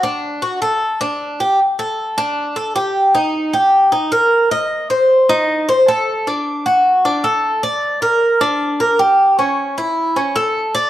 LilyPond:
\new Staff \with { instrumentName = "Cuban tres" } { \time 4/4 \key g \minor \tempo 4 = 154 d'4 fis'8 a'4 d'4 g'8 | r8 a'4 d'4 a'8 g'4 | ees'4 g'4 ees'8 bes'4 ees''8~ | ees''8 c''4 ees'4 c''8 a'4 |
d'4 fis'4 d'8 a'4 d''8~ | d''8 bes'4 d'4 bes'8 g'4 | cis'4 e'4 cis'8 a'4 d''8 | }